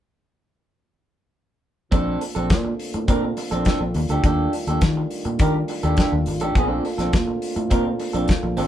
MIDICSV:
0, 0, Header, 1, 6, 480
1, 0, Start_track
1, 0, Key_signature, -2, "major"
1, 0, Tempo, 579151
1, 1593, Time_signature, 4, 2, 24, 8
1, 7188, End_track
2, 0, Start_track
2, 0, Title_t, "Clean electric guitar"
2, 0, Program_c, 0, 27
2, 1587, Note_on_c, 0, 60, 82
2, 1595, Note_on_c, 0, 62, 93
2, 1602, Note_on_c, 0, 69, 86
2, 1811, Note_off_c, 0, 60, 0
2, 1815, Note_off_c, 0, 62, 0
2, 1818, Note_off_c, 0, 69, 0
2, 1948, Note_on_c, 0, 69, 55
2, 1957, Note_on_c, 0, 62, 44
2, 1963, Note_on_c, 0, 60, 45
2, 2060, Note_off_c, 0, 69, 0
2, 2063, Note_off_c, 0, 60, 0
2, 2064, Note_off_c, 0, 62, 0
2, 2552, Note_on_c, 0, 60, 73
2, 2560, Note_on_c, 0, 62, 83
2, 2570, Note_on_c, 0, 70, 78
2, 2676, Note_off_c, 0, 70, 0
2, 2679, Note_off_c, 0, 62, 0
2, 2692, Note_off_c, 0, 60, 0
2, 2910, Note_on_c, 0, 69, 71
2, 2918, Note_on_c, 0, 62, 57
2, 2928, Note_on_c, 0, 60, 56
2, 3020, Note_off_c, 0, 69, 0
2, 3021, Note_off_c, 0, 60, 0
2, 3024, Note_off_c, 0, 62, 0
2, 3031, Note_on_c, 0, 60, 90
2, 3039, Note_on_c, 0, 62, 83
2, 3047, Note_on_c, 0, 69, 96
2, 3147, Note_off_c, 0, 69, 0
2, 3158, Note_off_c, 0, 62, 0
2, 3171, Note_off_c, 0, 60, 0
2, 3398, Note_on_c, 0, 69, 62
2, 3406, Note_on_c, 0, 67, 57
2, 3411, Note_on_c, 0, 62, 46
2, 3504, Note_off_c, 0, 69, 0
2, 3508, Note_off_c, 0, 67, 0
2, 3509, Note_off_c, 0, 62, 0
2, 3519, Note_on_c, 0, 62, 70
2, 3528, Note_on_c, 0, 67, 76
2, 3534, Note_on_c, 0, 69, 93
2, 3737, Note_off_c, 0, 62, 0
2, 3741, Note_off_c, 0, 67, 0
2, 3744, Note_off_c, 0, 69, 0
2, 3877, Note_on_c, 0, 69, 65
2, 3889, Note_on_c, 0, 67, 45
2, 3891, Note_on_c, 0, 62, 44
2, 3984, Note_off_c, 0, 69, 0
2, 3990, Note_off_c, 0, 67, 0
2, 3991, Note_off_c, 0, 62, 0
2, 4478, Note_on_c, 0, 62, 70
2, 4483, Note_on_c, 0, 67, 72
2, 4493, Note_on_c, 0, 70, 85
2, 4594, Note_off_c, 0, 70, 0
2, 4596, Note_off_c, 0, 67, 0
2, 4614, Note_off_c, 0, 62, 0
2, 4834, Note_on_c, 0, 69, 73
2, 4841, Note_on_c, 0, 67, 57
2, 4847, Note_on_c, 0, 62, 57
2, 4942, Note_off_c, 0, 69, 0
2, 4945, Note_off_c, 0, 62, 0
2, 4946, Note_off_c, 0, 67, 0
2, 4954, Note_on_c, 0, 62, 84
2, 4963, Note_on_c, 0, 67, 86
2, 4969, Note_on_c, 0, 69, 89
2, 5068, Note_off_c, 0, 69, 0
2, 5076, Note_off_c, 0, 67, 0
2, 5093, Note_off_c, 0, 62, 0
2, 5314, Note_on_c, 0, 69, 72
2, 5326, Note_on_c, 0, 67, 54
2, 5330, Note_on_c, 0, 62, 53
2, 5422, Note_off_c, 0, 69, 0
2, 5428, Note_off_c, 0, 67, 0
2, 5430, Note_off_c, 0, 62, 0
2, 5436, Note_on_c, 0, 59, 86
2, 5445, Note_on_c, 0, 61, 92
2, 5454, Note_on_c, 0, 68, 100
2, 5527, Note_off_c, 0, 59, 0
2, 5527, Note_on_c, 0, 60, 86
2, 5536, Note_off_c, 0, 61, 0
2, 5536, Note_on_c, 0, 62, 92
2, 5545, Note_off_c, 0, 68, 0
2, 5545, Note_on_c, 0, 69, 100
2, 5654, Note_off_c, 0, 60, 0
2, 5659, Note_off_c, 0, 62, 0
2, 5664, Note_off_c, 0, 69, 0
2, 5786, Note_on_c, 0, 69, 54
2, 5796, Note_on_c, 0, 62, 45
2, 5800, Note_on_c, 0, 60, 42
2, 5898, Note_off_c, 0, 69, 0
2, 5903, Note_off_c, 0, 62, 0
2, 5905, Note_off_c, 0, 60, 0
2, 6385, Note_on_c, 0, 60, 79
2, 6393, Note_on_c, 0, 62, 74
2, 6398, Note_on_c, 0, 70, 94
2, 6504, Note_off_c, 0, 70, 0
2, 6509, Note_off_c, 0, 62, 0
2, 6527, Note_off_c, 0, 60, 0
2, 6741, Note_on_c, 0, 69, 59
2, 6750, Note_on_c, 0, 62, 59
2, 6757, Note_on_c, 0, 60, 57
2, 6855, Note_off_c, 0, 69, 0
2, 6859, Note_off_c, 0, 62, 0
2, 6863, Note_off_c, 0, 60, 0
2, 7103, Note_on_c, 0, 60, 87
2, 7111, Note_on_c, 0, 62, 76
2, 7115, Note_on_c, 0, 69, 87
2, 7188, Note_off_c, 0, 60, 0
2, 7188, Note_off_c, 0, 62, 0
2, 7188, Note_off_c, 0, 69, 0
2, 7188, End_track
3, 0, Start_track
3, 0, Title_t, "French horn section"
3, 0, Program_c, 1, 60
3, 1588, Note_on_c, 1, 50, 74
3, 1589, Note_on_c, 1, 60, 69
3, 1590, Note_on_c, 1, 58, 66
3, 1591, Note_on_c, 1, 57, 66
3, 1591, Note_on_c, 1, 65, 72
3, 3253, Note_off_c, 1, 50, 0
3, 3254, Note_off_c, 1, 60, 0
3, 3255, Note_off_c, 1, 57, 0
3, 3255, Note_off_c, 1, 58, 0
3, 3267, Note_on_c, 1, 51, 78
3, 3268, Note_on_c, 1, 55, 72
3, 3268, Note_on_c, 1, 57, 68
3, 3270, Note_on_c, 1, 62, 72
3, 5408, Note_off_c, 1, 51, 0
3, 5408, Note_off_c, 1, 55, 0
3, 5409, Note_off_c, 1, 62, 0
3, 5423, Note_on_c, 1, 58, 71
3, 5426, Note_on_c, 1, 60, 72
3, 5427, Note_on_c, 1, 50, 76
3, 7188, Note_off_c, 1, 50, 0
3, 7188, Note_off_c, 1, 57, 0
3, 7188, Note_off_c, 1, 58, 0
3, 7188, Note_off_c, 1, 60, 0
3, 7188, Note_off_c, 1, 65, 0
3, 7188, End_track
4, 0, Start_track
4, 0, Title_t, "Fingered electric bass"
4, 0, Program_c, 2, 33
4, 1594, Note_on_c, 2, 34, 89
4, 1781, Note_off_c, 2, 34, 0
4, 1956, Note_on_c, 2, 34, 89
4, 2074, Note_on_c, 2, 46, 92
4, 2087, Note_off_c, 2, 34, 0
4, 2261, Note_off_c, 2, 46, 0
4, 2439, Note_on_c, 2, 45, 76
4, 2530, Note_off_c, 2, 45, 0
4, 2555, Note_on_c, 2, 46, 102
4, 2741, Note_off_c, 2, 46, 0
4, 2914, Note_on_c, 2, 34, 92
4, 3007, Note_off_c, 2, 34, 0
4, 3153, Note_on_c, 2, 34, 90
4, 3247, Note_off_c, 2, 34, 0
4, 3271, Note_on_c, 2, 39, 95
4, 3365, Note_off_c, 2, 39, 0
4, 3392, Note_on_c, 2, 38, 88
4, 3486, Note_off_c, 2, 38, 0
4, 3512, Note_on_c, 2, 39, 95
4, 3699, Note_off_c, 2, 39, 0
4, 3871, Note_on_c, 2, 39, 82
4, 3965, Note_off_c, 2, 39, 0
4, 3995, Note_on_c, 2, 51, 94
4, 4181, Note_off_c, 2, 51, 0
4, 4354, Note_on_c, 2, 46, 81
4, 4447, Note_off_c, 2, 46, 0
4, 4474, Note_on_c, 2, 51, 92
4, 4660, Note_off_c, 2, 51, 0
4, 4835, Note_on_c, 2, 39, 86
4, 4927, Note_off_c, 2, 39, 0
4, 5073, Note_on_c, 2, 39, 94
4, 5166, Note_off_c, 2, 39, 0
4, 5193, Note_on_c, 2, 32, 90
4, 5310, Note_off_c, 2, 32, 0
4, 5310, Note_on_c, 2, 33, 90
4, 5404, Note_off_c, 2, 33, 0
4, 5432, Note_on_c, 2, 34, 97
4, 5619, Note_off_c, 2, 34, 0
4, 5788, Note_on_c, 2, 34, 85
4, 5883, Note_off_c, 2, 34, 0
4, 5914, Note_on_c, 2, 46, 84
4, 6100, Note_off_c, 2, 46, 0
4, 6268, Note_on_c, 2, 45, 79
4, 6363, Note_off_c, 2, 45, 0
4, 6393, Note_on_c, 2, 46, 97
4, 6579, Note_off_c, 2, 46, 0
4, 6747, Note_on_c, 2, 34, 88
4, 6842, Note_off_c, 2, 34, 0
4, 6989, Note_on_c, 2, 34, 93
4, 7083, Note_off_c, 2, 34, 0
4, 7108, Note_on_c, 2, 32, 82
4, 7188, Note_off_c, 2, 32, 0
4, 7188, End_track
5, 0, Start_track
5, 0, Title_t, "Muted clean electric guitar strokes"
5, 1831, Note_on_c, 9, 29, 44
5, 1914, Note_off_c, 9, 29, 0
5, 2073, Note_on_c, 9, 29, 42
5, 2156, Note_off_c, 9, 29, 0
5, 2194, Note_on_c, 9, 29, 51
5, 2276, Note_off_c, 9, 29, 0
5, 2438, Note_on_c, 9, 29, 46
5, 2521, Note_off_c, 9, 29, 0
5, 2679, Note_on_c, 9, 29, 43
5, 2762, Note_off_c, 9, 29, 0
5, 2794, Note_on_c, 9, 29, 38
5, 2877, Note_off_c, 9, 29, 0
5, 3157, Note_on_c, 9, 29, 44
5, 3240, Note_off_c, 9, 29, 0
5, 3275, Note_on_c, 9, 29, 46
5, 3358, Note_off_c, 9, 29, 0
5, 3759, Note_on_c, 9, 29, 33
5, 3842, Note_off_c, 9, 29, 0
5, 4005, Note_on_c, 9, 29, 35
5, 4088, Note_off_c, 9, 29, 0
5, 4122, Note_on_c, 9, 29, 52
5, 4204, Note_off_c, 9, 29, 0
5, 4353, Note_on_c, 9, 29, 52
5, 4436, Note_off_c, 9, 29, 0
5, 4598, Note_on_c, 9, 29, 48
5, 4681, Note_off_c, 9, 29, 0
5, 4716, Note_on_c, 9, 29, 41
5, 4799, Note_off_c, 9, 29, 0
5, 5078, Note_on_c, 9, 29, 43
5, 5161, Note_off_c, 9, 29, 0
5, 5197, Note_on_c, 9, 29, 32
5, 5280, Note_off_c, 9, 29, 0
5, 5677, Note_on_c, 9, 29, 33
5, 5760, Note_off_c, 9, 29, 0
5, 5914, Note_on_c, 9, 29, 46
5, 5997, Note_off_c, 9, 29, 0
5, 6030, Note_on_c, 9, 29, 41
5, 6113, Note_off_c, 9, 29, 0
5, 6268, Note_on_c, 9, 29, 47
5, 6351, Note_off_c, 9, 29, 0
5, 6507, Note_on_c, 9, 29, 43
5, 6590, Note_off_c, 9, 29, 0
5, 6628, Note_on_c, 9, 29, 39
5, 6711, Note_off_c, 9, 29, 0
5, 6987, Note_on_c, 9, 29, 45
5, 7070, Note_off_c, 9, 29, 0
5, 7188, End_track
6, 0, Start_track
6, 0, Title_t, "Drums"
6, 1590, Note_on_c, 9, 42, 56
6, 1592, Note_on_c, 9, 36, 101
6, 1673, Note_off_c, 9, 42, 0
6, 1675, Note_off_c, 9, 36, 0
6, 1834, Note_on_c, 9, 46, 65
6, 1916, Note_off_c, 9, 46, 0
6, 1955, Note_on_c, 9, 42, 46
6, 2038, Note_off_c, 9, 42, 0
6, 2070, Note_on_c, 9, 42, 58
6, 2074, Note_on_c, 9, 36, 114
6, 2081, Note_on_c, 9, 38, 112
6, 2153, Note_off_c, 9, 42, 0
6, 2157, Note_off_c, 9, 36, 0
6, 2164, Note_off_c, 9, 38, 0
6, 2316, Note_on_c, 9, 46, 71
6, 2399, Note_off_c, 9, 46, 0
6, 2434, Note_on_c, 9, 42, 45
6, 2517, Note_off_c, 9, 42, 0
6, 2553, Note_on_c, 9, 42, 64
6, 2555, Note_on_c, 9, 36, 102
6, 2636, Note_off_c, 9, 42, 0
6, 2638, Note_off_c, 9, 36, 0
6, 2792, Note_on_c, 9, 46, 80
6, 2875, Note_off_c, 9, 46, 0
6, 2915, Note_on_c, 9, 42, 40
6, 2998, Note_off_c, 9, 42, 0
6, 3025, Note_on_c, 9, 42, 58
6, 3034, Note_on_c, 9, 36, 98
6, 3043, Note_on_c, 9, 38, 88
6, 3108, Note_off_c, 9, 42, 0
6, 3117, Note_off_c, 9, 36, 0
6, 3125, Note_off_c, 9, 38, 0
6, 3268, Note_on_c, 9, 46, 57
6, 3351, Note_off_c, 9, 46, 0
6, 3389, Note_on_c, 9, 42, 47
6, 3472, Note_off_c, 9, 42, 0
6, 3511, Note_on_c, 9, 36, 106
6, 3513, Note_on_c, 9, 42, 57
6, 3594, Note_off_c, 9, 36, 0
6, 3596, Note_off_c, 9, 42, 0
6, 3754, Note_on_c, 9, 46, 67
6, 3837, Note_off_c, 9, 46, 0
6, 3874, Note_on_c, 9, 42, 49
6, 3957, Note_off_c, 9, 42, 0
6, 3989, Note_on_c, 9, 42, 62
6, 3993, Note_on_c, 9, 36, 111
6, 3999, Note_on_c, 9, 38, 120
6, 4071, Note_off_c, 9, 42, 0
6, 4076, Note_off_c, 9, 36, 0
6, 4082, Note_off_c, 9, 38, 0
6, 4231, Note_on_c, 9, 46, 63
6, 4314, Note_off_c, 9, 46, 0
6, 4350, Note_on_c, 9, 42, 46
6, 4433, Note_off_c, 9, 42, 0
6, 4468, Note_on_c, 9, 42, 65
6, 4472, Note_on_c, 9, 36, 113
6, 4550, Note_off_c, 9, 42, 0
6, 4555, Note_off_c, 9, 36, 0
6, 4709, Note_on_c, 9, 46, 79
6, 4792, Note_off_c, 9, 46, 0
6, 4833, Note_on_c, 9, 42, 43
6, 4915, Note_off_c, 9, 42, 0
6, 4945, Note_on_c, 9, 42, 56
6, 4954, Note_on_c, 9, 36, 93
6, 4963, Note_on_c, 9, 38, 98
6, 5028, Note_off_c, 9, 42, 0
6, 5037, Note_off_c, 9, 36, 0
6, 5046, Note_off_c, 9, 38, 0
6, 5187, Note_on_c, 9, 46, 59
6, 5270, Note_off_c, 9, 46, 0
6, 5303, Note_on_c, 9, 42, 50
6, 5386, Note_off_c, 9, 42, 0
6, 5431, Note_on_c, 9, 42, 53
6, 5432, Note_on_c, 9, 36, 96
6, 5514, Note_off_c, 9, 42, 0
6, 5515, Note_off_c, 9, 36, 0
6, 5676, Note_on_c, 9, 46, 71
6, 5759, Note_off_c, 9, 46, 0
6, 5793, Note_on_c, 9, 42, 54
6, 5797, Note_on_c, 9, 38, 33
6, 5876, Note_off_c, 9, 42, 0
6, 5880, Note_off_c, 9, 38, 0
6, 5909, Note_on_c, 9, 42, 61
6, 5913, Note_on_c, 9, 36, 110
6, 5919, Note_on_c, 9, 38, 97
6, 5991, Note_off_c, 9, 42, 0
6, 5996, Note_off_c, 9, 36, 0
6, 6002, Note_off_c, 9, 38, 0
6, 6149, Note_on_c, 9, 46, 66
6, 6232, Note_off_c, 9, 46, 0
6, 6268, Note_on_c, 9, 42, 45
6, 6351, Note_off_c, 9, 42, 0
6, 6387, Note_on_c, 9, 42, 66
6, 6392, Note_on_c, 9, 36, 97
6, 6470, Note_off_c, 9, 42, 0
6, 6475, Note_off_c, 9, 36, 0
6, 6626, Note_on_c, 9, 46, 76
6, 6709, Note_off_c, 9, 46, 0
6, 6748, Note_on_c, 9, 42, 43
6, 6830, Note_off_c, 9, 42, 0
6, 6860, Note_on_c, 9, 42, 56
6, 6871, Note_on_c, 9, 36, 100
6, 6878, Note_on_c, 9, 38, 91
6, 6943, Note_off_c, 9, 42, 0
6, 6954, Note_off_c, 9, 36, 0
6, 6961, Note_off_c, 9, 38, 0
6, 7102, Note_on_c, 9, 46, 57
6, 7185, Note_off_c, 9, 46, 0
6, 7188, End_track
0, 0, End_of_file